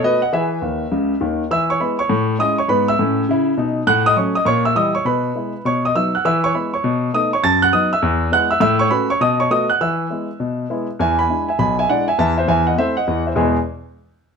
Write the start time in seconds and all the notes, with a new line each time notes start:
0.03 A3 B3 F#4 B4 D#5
0.22 D#5 F#5
0.33 E3 G#4 B4 E5
0.62 D#2 D#3
0.92 C#2 C#3
1.21 D#2 D#3
1.51 E3 E5 E6
1.70 C#5 C#6
1.80 G#3 B3 E4 B4 B5
1.99 C#5 C#6
2.10 A2
2.39 G#3 C#4 E4 D#5 D#6
2.58 C#5 C#6
2.68 G#2 B3 B4 B5
2.88 E5 E6
2.99 A2 C#4
3.29 C#3 E4
3.57 B2 D#4
3.87 A2 F#5 F#6
4.06 D#5 D#6
4.16 F#3 A3 C#4 C#5 C#6
4.35 D#5 D#6
4.45 A#2 C#5 C#6
4.65 E5 E6
4.75 E3 G3 E4 D#5 D#6
4.95 C#5 C#6
5.05 B2 B4 B5
5.36 G#3 B3 E4
5.65 B2 C#5 C#6
5.85 D#5 D#6
5.95 F#3 B3 D#4 E5 E6
6.15 F#5 F#6
6.25 E3 E5 E6
6.44 C#5 C#6
6.54 G#3 B3 E4 B4 B5
6.74 C#5 C#6
6.84 B2
7.14 A3 B3 D#4 D#5 D#6
7.33 C#5 C#6
7.43 F#2 A5 A6
7.62 F#5 F#6
7.72 F#3 B3 D#4 D#5 D#6
7.93 E5 E6
8.02 E2
8.32 G#3 B3 E4 F#5 F#6
8.51 E5 E6
8.60 A2 E5 E6
8.79 C#5 C#6
8.90 A3 C#4 F#4 B4 B5
9.10 C#5 C#6
9.21 B2 D#5 D#6
9.40 C#5 C#6
9.50 A3 B3 F#4 D#5 D#6
9.70 F#5 F#6
9.81 E3 E5 E6
10.10 G#3 B3 E4
10.40 B2
10.70 G#3 B3 E4
10.99 E2 E3 E5 G#5
11.19 G#5 B5
11.29 G#3 D4 E4
11.48 E5 G#5
11.59 B1 B2 G#5 B5
11.79 E5 G#5
11.89 G#3 D4 E4 D5 F#5
12.08 E5 G#5
12.18 E2 E3 E5 A5
12.38 C5 E5
12.48 E2 E3 E5 G#5
12.67 D#5 F#5
12.77 A3 C4 E4 C5 E5
12.97 D#5 F#5
13.07 E2 E3
13.27 C5 E5
13.35 E2 B2 G#3 B3 E4 G#4 E5